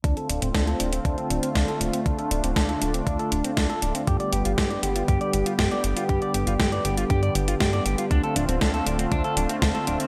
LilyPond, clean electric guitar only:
\new Staff \with { instrumentName = "Clean electric guitar" } { \time 4/4 \key d \dorian \tempo 4 = 119 d'16 a'16 d'16 c'16 d'16 a'16 d'16 c'16 d'16 a'16 d'16 c'16 d'16 a'16 d'16 c'16 | d'16 a'16 d'16 c'16 d'16 a'16 d'16 c'16 d'16 a'16 d'16 c'16 d'16 a'16 d'16 c'16 | g'16 d''16 g'16 f'16 g'16 d''16 g'16 f'16 g'16 d''16 g'16 f'16 g'16 d''16 g'16 f'16 | g'16 d''16 g'16 f'16 g'16 d''16 g'16 f'16 g'16 d''16 g'16 f'16 g'16 d''16 g'16 f'16 |
d'16 a'16 d'16 c'16 d'16 a'16 d'16 c'16 d'16 a'16 d'16 c'16 d'16 a'16 d'16 c'16 | }